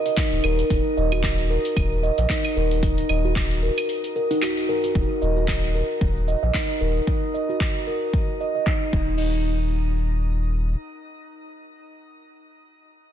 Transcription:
0.06 D#5, open hi-hat, shaker
0.17 D#4, kick, clap, open hi-hat, shaker
0.32 D#1, open hi-hat, shaker
0.44 D#1 A#4, claves, shaker
0.59 open hi-hat, shaker
0.70 D#1 D#4, kick, open hi-hat, shaker
0.97 D#1 D#5, shaker
1.12 F#4, claves, shaker
1.23 kick, clap, open hi-hat, shaker
1.38 open hi-hat
1.50 A#4, shaker
1.65 open hi-hat, shaker
1.77 D#1, kick, open hi-hat, claves, shaker
1.92 shaker
2.03 D#5, shaker
2.18 A#1 D#5, open hi-hat, shaker
2.30 D#4, kick, clap, open hi-hat, shaker
2.45 open hi-hat, claves, shaker
2.56 D#1 A#4, shaker
2.71 open hi-hat, shaker
2.83 D#4, kick, open hi-hat, shaker
2.98 open hi-hat, shaker
3.09 D#1 D#5, claves, shaker
3.25 F#4, shaker
3.36 kick, clap, open hi-hat, shaker
3.51 open hi-hat, shaker
3.63 A#4, shaker
3.78 open hi-hat, claves, shaker
3.89 open hi-hat, shaker
4.04 open hi-hat, shaker
4.16 A#4, shaker
4.31 D#4, open hi-hat, shaker
4.42 F#4, clap, open hi-hat, claves, shaker
4.57 open hi-hat, shaker
4.69 A#4, shaker
4.84 F#4, open hi-hat, shaker
4.95 D#1 D#4, kick, shaker
5.22 D#1 D#5, shaker
5.37 F#4, shaker
5.48 kick, clap, shaker
5.75 A#4, shaker
5.90 shaker
6.01 D#1, kick, shaker
6.16 shaker
6.28 D#5, shaker
6.43 A#1 D#5, shaker
6.54 D#4, kick, clap, shaker
6.70 shaker
6.81 D#1 A#4, shaker
6.96 shaker
7.07 D#4, kick, shaker
7.34 D#5, shaker
7.49 F#4, shaker
7.60 kick, clap, shaker
7.87 A#4, shaker
8.03 shaker
8.14 kick, shaker
8.29 shaker
8.40 D#5, shaker
8.55 D#5, shaker
8.67 D#4, kick, clap
8.82 shaker
8.93 D#1 D#4, kick, crash

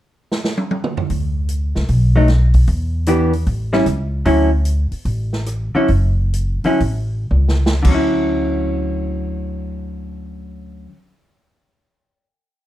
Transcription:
0.32 snare
0.44 snare
0.57 high tom
0.71 high tom
0.84 mid tom
0.97 floor tom
1.10 D2, kick, open hi-hat
1.49 closed hi-hat
1.75 C#2, snare
1.88 B1, kick, open hi-hat
2.16 F#3 A3 D#4
2.28 cross-stick, snare, closed hi-hat
2.54 kick, open hi-hat
2.67 E2, kick, open hi-hat
3.06 E3 B3 D4 G4, closed hi-hat
3.33 open hi-hat
3.46 A1, kick, open hi-hat
3.73 G3 C#4 E4, snare
3.86 C#2, cross-stick, closed hi-hat
4.25 D2 D3 F#3 C#4 E4, kick, open hi-hat
4.65 closed hi-hat
4.92 muted upright bass stroke, open hi-hat
5.05 A1, kick, open hi-hat
5.33 snare
5.46 cross-stick, closed hi-hat
5.75 D3 F#3 C#4 E4, muted upright bass stroke
5.88 F#1, kick, open hi-hat
6.33 closed hi-hat
6.64 D3 F#3 C#4 E4, muted upright bass stroke, open hi-hat
6.80 A1, kick, open hi-hat
7.31 C#2, mid tom
7.48 snare
7.66 snare
7.83 D2 D3, kick, crash
7.87 F#3 C#4
7.94 E4

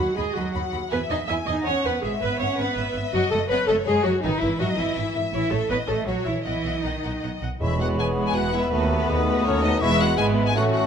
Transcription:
Already playing: F#5
0.00 F#3 F#4
0.17 D#2 G#3 G#4 D#5 B5
0.36 D#2 F#3 F#4 B5
0.54 D#2 F#5 B5
0.73 D#2 B5
0.91 E2 B3 B4 E5 G#5
1.10 E2 D#4 D#5 G#5
1.28 E2 E4 E5 G#5
1.47 E2 D#4 D#5 G#5
1.65 E2 C#4 C#5 F#5 G#5
1.84 E2 B3 B4 G#5
2.03 G#1 G#3 G#4 E5
2.22 G#1 B3 B4 E5
2.40 G#1 C#4 C#5 E5 F#5
2.58 G#1 B3 B4 E5
2.76 G#1 E5
2.94 G#1 E5
3.13 F#1 F#3 F#4 D#5
3.31 F#1 A3 A4 D#5
3.49 F#1 B3 B4 C#5 D#5
3.68 F#1 A3 A4 D#5
3.87 F#1 G#3 G#4 D#5
4.04 F#1 F#3 F#4 D#5
4.23 G#1 D#3 D#4 B4 E5
4.41 G#1 E3 E4 E5
4.60 G#1 F#3 F#4 D#5 E5
4.78 G#1 E3 E4 E5
4.97 G#1 E5
5.15 G#1 E5
5.33 A1 E3 E4 C#5
5.50 A1 A3 A4 C#5
5.69 A1 B3 B4 C#5 D#5
5.86 A1 A3 A4 C#5
6.07 A#1 F#3 F#4 C#5 E5
6.25 A#1 E3 E4 E5
6.45 B1 E3 E4 D#5 F#5
6.65 B1 F#5
6.84 B1 D#3 D#4 F#5
7.03 B1 F#5
7.22 B1 F#5
7.42 B1 F#5
7.60 E1 E2 G#3 B3 E4 C#5 E5 B5
7.79 G#3 B3 E4 F#4 F#5
7.97 E1 E2 B3 G#4 G#5
8.17 G#3 B3 E4
8.26 G#4 G#5
8.34 E1 E2 F#4 B4 F#5
8.53 G#3 B3 E4 E5
8.71 D#2 A3 B3 F#4 B4
8.90 A3 B3 F#4
9.09 D#2 G#3 D#6
9.27 A3 B3 F#4
9.45 D#2 F#3 C#4 A4 C#5
9.62 A3 B3 D#4 F#4 D#5
9.81 E1 E2 G#3 B3 E4 B4 E5 C#6
10.00 F#4 F#5
10.17 G#1 G#2 G#3 B3 E4 G#4 B4 G#5 B5
10.46 G#4 G#5
10.55 A1 A2 A3 C#4 F#4 C#5 F#5 C#6
10.73 F#4 F#5

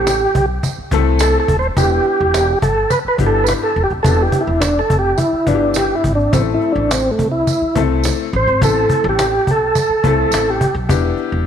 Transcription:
Already playing: A1 A3 C4 E4 G4 A4
0.07 cajon slap, tambourine
0.35 B1, cajon bass
0.63 cajon bass, cajon slap, tambourine
0.78 muted upright bass stroke
0.91 C2 A3 C4 E4 A4, cajon bass
1.19 A4, cajon slap, tambourine
1.40 A4
1.48 D#1, cajon bass
1.59 C5, cajon slap
1.77 E1 B3 D4 E4 G4, cajon bass, tambourine
2.04 cajon slap
2.20 E1
2.34 cajon slap, tambourine
2.62 G1 A4, cajon bass
2.90 B4, cajon bass, cajon slap, tambourine
3.05 B4, muted upright bass stroke
3.18 G1 B3 D4 E4 G4, cajon bass
3.26 A4
3.44 B4, tambourine
3.48 cajon slap
3.63 A4
3.76 E1, cajon slap
3.84 G4
3.90 D#1, cajon slap
4.03 E1 B3 D4 E4 G4 A4, cajon bass, tambourine
4.22 G4
4.32 cajon bass
4.41 E4
4.47 E1
4.61 D4, cajon slap, tambourine
4.79 A4
4.90 F1, cajon bass, cajon slap
4.99 G4
5.18 E4, cajon bass, cajon slap, tambourine
5.33 muted upright bass stroke
5.46 G1 B3 D4 E4 F4, cajon bass
5.55 G4
5.74 G4, cajon slap, tambourine
5.95 E4
6.04 G#1, cajon bass
6.15 D4
6.19 cajon slap
6.33 A1 A3 C4 E4 A4, cajon bass, tambourine
6.54 E4
6.61 cajon slap
6.72 A1 D4
6.91 C4, cajon slap, tambourine
7.11 A3
7.19 C2, cajon bass
7.32 E4
7.47 cajon bass, cajon slap, tambourine
7.61 muted upright bass stroke
7.75 C2 A3 C4 E4 A4, cajon bass
8.04 cajon slap, tambourine
8.33 A1 C5, cajon slap
8.47 G#1, cajon slap
8.61 A1 A3 B3 E4 A4, cajon bass, tambourine
8.68 C4
8.90 cajon bass
9.04 A1
9.09 G4
9.19 cajon slap, tambourine
9.47 B1 A4, cajon bass
9.75 cajon bass, cajon slap, tambourine
9.89 muted upright bass stroke
10.04 C2 A3 C4 E4 A4, cajon bass
10.08 A4
10.31 A1, cajon slap, tambourine
10.50 G4
10.61 cajon bass
10.74 B1, cajon slap
10.89 E1 B3 D4 E4 G4, cajon bass, tambourine
11.17 cajon slap
11.32 E1

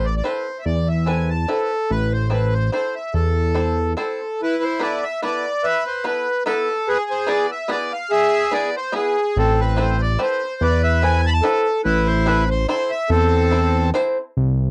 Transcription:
Already playing: A1
0.05 D5
0.17 D5
0.24 C4 E4 A4 B4 C5
0.59 E5
0.65 E2 D5
0.88 E5
1.06 C4 E4 A4 B4 G#5
1.29 A5
1.48 C4 E4 A4 B4
1.90 A1 B4
2.12 C5
2.30 C4 E4 A4 B4 C5
2.53 C5
2.72 C4 E4 A4 C5
2.95 E5
3.14 E2 A4
3.55 C4 E4 A4 C5
3.97 C4 E4 A4 C5
4.42 E4 B4
4.63 C5
4.79 B3 E4 A4 B4 D5
5.03 E5
5.22 B3 E4 A4 B4 D5
5.64 B4 E5
5.87 C5
6.04 B3 E4 A4 B4
6.46 B3 E4 A4 B4
6.88 G#4 B4
7.10 C5
7.27 B3 E4 G#4 B4 D5
7.51 E5
7.68 B3 E4 G#4 B4 D5
7.92 F5
8.10 G#4 E5
8.51 B3 E4 G#4 B4 D5
8.76 C5
8.92 B3 E4 G#4 B4
9.36 A1 C4 A4
9.60 B4
9.77 C4 E4 A4 B4 C5
10.02 D5
10.19 C4 E4 A4 B4 C5
10.61 E2 B4 D5
10.84 E5
11.02 C4 E4 A4 B4 G#5
11.25 A5 B5
11.33 A5
11.42 C4 E4 A4 B4
11.85 A1 E4 B4
12.07 C5
12.26 C4 E4 A4 B4 C5
12.50 C5
12.68 C4 E4 A4 C5
12.90 E5
13.10 E2 C4 A4
13.51 C4 E4 A4 C5
13.94 C4 E4 A4 C5
14.37 C2

